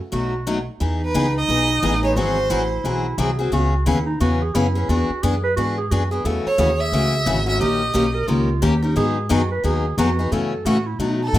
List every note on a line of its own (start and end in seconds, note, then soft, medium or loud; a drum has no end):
0.12 0.67 B1 medium
0.12 0.33 B2 medium
0.12 0.33 F#3 medium
0.12 0.33 A3 medium
0.12 0.33 D#4 medium
0.12 0.63 F#4 medium
0.12 0.34 F#4 medium
0.47 0.58 B2 medium
0.47 0.58 F#3 medium
0.47 0.58 A3 medium
0.47 0.58 D#4 medium
0.47 0.58 F#4 medium
0.80 1.14 E2 medium
0.80 1.01 E3 medium
0.80 1.01 B3 medium
0.80 2.17 D#4 medium
0.80 1.01 D#4 medium
0.80 1.02 G#4 medium
1.05 1.35 B4 medium
1.14 1.48 C#2 medium
1.14 1.25 E3 medium
1.14 1.26 B3 medium
1.14 1.26 D#4 medium
1.14 1.26 G#4 loud
1.38 2.00 D#5 loud
1.49 1.82 B1 medium
1.49 1.69 E3 medium
1.49 1.70 B3 medium
1.49 1.70 D#4 medium
1.49 1.70 G#4 medium
1.83 2.16 A1 medium
1.83 1.94 E3 medium
1.83 1.94 B3 medium
1.83 1.94 D#4 medium
1.83 1.94 G#4 medium
2.03 2.17 B3 soft
2.03 2.17 D#4 soft
2.03 2.16 G#4 medium
2.03 2.17 C#5 medium
2.16 2.49 G#1 medium
2.16 2.37 E3 medium
2.16 2.37 F#3 medium
2.16 2.38 C4 medium
2.16 2.52 F#4 medium
2.16 2.38 F#4 medium
2.16 2.38 G#4 medium
2.16 2.81 C5 medium
2.50 2.83 A1 medium
2.50 2.61 E3 medium
2.50 2.61 F#3 loud
2.50 2.62 C4 medium
2.50 3.20 E4 medium
2.50 2.62 F#4 loud
2.50 2.62 G#4 medium
2.84 3.17 B1 medium
2.84 3.05 E3 medium
2.84 3.05 F#3 medium
2.84 3.06 C4 medium
2.84 3.06 F#4 medium
2.84 3.06 G#4 medium
3.18 3.51 C2 medium
3.18 3.29 E3 medium
3.18 3.29 F#3 medium
3.18 3.30 C4 medium
3.18 3.30 F#4 medium
3.18 3.52 G#4 medium
3.18 3.30 G#4 medium
3.39 3.52 C4 soft
3.39 3.52 F#4 soft
3.39 3.52 G#4 medium
3.52 3.85 C#2 medium
3.52 3.73 C#3 medium
3.52 3.73 E3 medium
3.52 3.73 B3 medium
3.52 3.73 C#4 medium
3.52 3.84 F#4 medium
3.52 3.73 G#4 medium
3.86 4.20 D#2 medium
3.86 3.97 C#3 medium
3.86 3.97 E3 medium
3.86 3.97 B3 medium
3.86 3.98 C#4 medium
3.86 4.05 E4 medium
3.86 3.98 G#4 medium
4.06 4.19 D#4 medium
4.20 4.54 E2 medium
4.20 4.41 C#3 medium
4.20 4.41 E3 medium
4.20 4.41 B3 medium
4.20 4.41 C#4 medium
4.20 4.43 F#4 medium
4.20 4.41 G#4 medium
4.42 4.56 G#4 loud
4.55 4.88 F#2 loud
4.55 4.66 C#3 medium
4.55 4.66 E3 medium
4.55 4.66 B3 medium
4.55 4.66 C#4 loud
4.55 4.91 E4 medium
4.55 4.66 G#4 medium
4.75 4.89 B3 soft
4.75 4.89 C#4 soft
4.75 4.88 G#4 medium
4.89 5.08 E2 medium
4.89 5.09 E3 medium
4.89 5.10 B3 medium
4.89 5.10 D4 medium
4.89 5.24 F#4 medium
4.89 5.10 G#4 medium
5.10 muted upright bass stroke soft
5.23 5.56 F#2 medium
5.23 5.34 E3 medium
5.23 5.34 B3 medium
5.23 5.34 D4 medium
5.23 5.43 G#4 medium
5.23 5.34 G#4 loud
5.43 5.56 B4 loud
5.56 5.90 G#2 medium
5.56 5.77 E3 medium
5.56 5.78 B3 medium
5.56 5.78 D4 medium
5.56 5.75 F#4 medium
5.56 5.78 G#4 medium
5.78 5.92 G#4 medium
5.91 6.24 F#2 loud
5.91 6.02 E3 medium
5.91 6.02 B3 medium
5.91 6.02 D4 medium
5.91 6.11 F#4 medium
5.91 6.02 G#4 medium
6.11 6.25 B3 soft
6.11 6.25 D4 soft
6.11 6.24 G#4 medium
6.11 6.27 G#4 medium
6.25 6.44 E2 medium
6.25 6.45 C#3 medium
6.25 6.45 E3 medium
6.25 6.46 A3 medium
6.25 6.46 C#4 medium
6.25 6.46 F#4 medium
6.25 6.60 A4 loud
6.45 6.82 C#5 medium
6.45 muted upright bass stroke soft
6.58 6.91 D#2 medium
6.58 6.69 C#3 medium
6.58 6.69 E3 medium
6.58 6.69 A3 medium
6.58 6.69 C#4 medium
6.58 6.70 F#4 medium
6.58 7.35 G#4 medium
6.80 7.47 E5 loud
6.92 7.25 C#2 medium
6.92 7.13 C#3 medium
6.92 7.13 E3 medium
6.92 7.14 A3 medium
6.92 7.13 C#4 medium
6.92 7.14 F#4 medium
7.26 7.59 G#1 loud
7.26 7.37 C#3 medium
7.26 7.37 E3 medium
7.26 7.38 A3 medium
7.26 7.38 C#4 medium
7.26 7.38 F#4 medium
7.46 7.60 A3 soft
7.46 7.60 C#4 soft
7.46 7.59 F#4 medium
7.46 7.60 E5 medium
7.59 7.93 A#1 medium
7.59 7.81 D#3 medium
7.59 7.81 A#3 medium
7.59 7.81 C#4 medium
7.59 7.91 G4 medium
7.59 7.81 G4 medium
7.59 7.82 A#4 medium
7.59 8.25 D#5 medium
7.94 8.27 B1 medium
7.94 8.05 D#3 medium
7.94 8.05 A#3 medium
7.94 8.05 C#4 medium
7.94 8.16 G4 medium
7.94 8.05 G4 medium
7.94 8.06 A#4 medium
8.14 8.29 A#4 medium
8.28 8.61 C#2 medium
8.28 8.48 D#3 medium
8.28 8.49 A#3 medium
8.28 8.49 C#4 medium
8.28 8.63 F4 medium
8.28 8.49 G4 medium
8.28 8.49 A#4 medium
8.62 8.95 D#2 loud
8.62 8.73 D#3 medium
8.62 8.73 A#3 loud
8.62 8.73 C#4 medium
8.62 8.85 G4 medium
8.62 8.73 G4 loud
8.62 8.73 A#4 medium
8.82 8.96 C#4 soft
8.82 8.96 D#4 medium
8.82 8.96 G4 soft
8.82 8.95 A#4 medium
8.96 9.29 G#2 medium
8.96 9.16 D#3 medium
8.96 9.17 F#3 medium
8.96 9.17 B3 medium
8.96 9.17 D#4 medium
8.96 9.33 G#4 loud
8.96 9.17 G#4 medium
9.29 9.63 F#2 medium
9.29 9.41 D#3 medium
9.29 9.41 F#3 medium
9.29 9.41 B3 loud
9.29 9.41 D#4 loud
9.29 9.51 F#4 medium
9.29 9.41 G#4 loud
9.52 9.64 B4 medium
9.64 9.97 D#2 medium
9.64 9.84 D#3 medium
9.64 9.85 F#3 medium
9.64 9.85 B3 medium
9.64 9.85 D#4 medium
9.64 9.85 G#4 medium
9.64 9.96 G#4 medium
9.98 10.31 F2 loud
9.98 10.09 D#3 medium
9.98 10.09 F#3 medium
9.98 10.09 B3 medium
9.98 10.09 D#4 loud
9.98 10.33 F#4 medium
9.98 10.09 G#4 medium
10.19 10.32 B3 soft
10.19 10.32 D#4 soft
10.19 10.31 G#4 medium
10.31 10.64 F#2 medium
10.31 10.52 C#3 medium
10.31 10.52 E3 medium
10.31 10.53 A3 medium
10.31 10.53 C#4 medium
10.31 10.53 F#4 medium
10.31 10.67 A4 medium
10.65 10.98 A2 medium
10.65 10.76 C#3 medium
10.65 10.77 E3 medium
10.65 10.77 A3 loud
10.65 10.77 C#4 medium
10.65 10.88 F#4 medium
10.65 10.77 F#4 loud
10.86 11.00 E4 medium
10.99 11.32 B2 medium
10.99 11.20 B2 medium
10.99 11.20 F#3 medium
10.99 11.20 A3 medium
10.99 11.20 D#4 medium
10.99 11.39 D#4 medium
10.99 11.20 F#4 medium
11.23 11.39 A4 medium
11.33 11.39 G#2 loud
11.33 11.39 B2 medium
11.33 11.39 F#3 medium
11.33 11.39 A3 medium
11.33 11.39 D#4 medium
11.33 11.39 F#4 medium